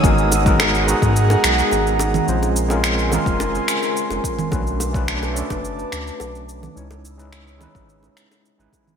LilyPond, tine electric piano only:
\new Staff \with { instrumentName = "Tine electric piano" } { \time 4/4 \key b \major \tempo 4 = 107 <gis b dis' fis' ais'>8. <gis b dis' fis' ais'>8. <gis b dis' fis' gis'>2~ <gis b dis' fis' gis'>8 | <gis bis cis' eis' bis'>8. <gis bis cis' eis' ais'>8. <gis bis cis' eis' ais'>2~ <gis bis cis' eis' ais'>8 | <a cis' d' fis' b'>8. <a cis' d' fis' b'>8. <a cis' d' fis' a'>2~ <a cis' d' fis' a'>8 | <gis cis' dis' e' cis''>8. <gis cis' dis' e' b'>8. <gis cis' dis' e' b'>4.~ <gis cis' dis' e' b'>16 <gis cis' dis' e' b'>8. | }